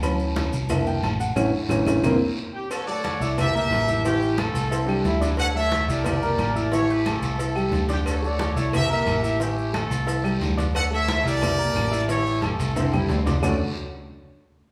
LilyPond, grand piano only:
<<
  \new Staff \with { instrumentName = "Grand piano" } { \time 4/4 \key d \major \tempo 4 = 179 b''4 r4 e''8 g''8 a''8 fis''8 | <a cis' e'>8 r8 <a cis' e'>8 <a cis' e'>8 <bes c' e'>8 r4. | r8 <a a' a''>4 <e' e'' e'''>4 <bes bes' bes''>4 <e' e'' e'''>8 | <e e' e''>4 <a a' a''>4 <e' e'' e'''>8 <g g' g''>4 <d' d'' d'''>8~ |
<d' d'' d'''>8 <a a' a''>4 <e' e'' e'''>4 <bes bes' bes''>4 <e' e'' e'''>8 | <e e' e''>4 <a a' a''>4 <e' e'' e'''>8 <g g' g''>4 <d' d'' d'''>8~ | <d' d'' d'''>8 <a a' a''>4 <e' e'' e'''>4 <bes bes' bes''>4 <e' e'' e'''>8 | <e e' e''>4 <a a' a''>4 <e' e'' e'''>8 <g g' g''>4 <d' d'' d'''>8~ |
<d' d'' d'''>8 <a a' a''>4 <e' e'' e'''>4 <bes bes' bes''>4 <e' e'' e'''>8 | <e e' e''>4 <a a' a''>4 <e' e'' e'''>8 <g g' g''>4 <d' d'' d'''>8 | <d a cis' d' fis' a'>8 r2. r8 | }
  \new Staff \with { instrumentName = "Grand piano" } { \clef bass \time 4/4 \key d \major <e fis cis'>4. r8 <e bes d'>8 r4. | r1 | r1 | r1 |
r1 | r1 | r1 | r1 |
r1 | r1 | r1 | }
>>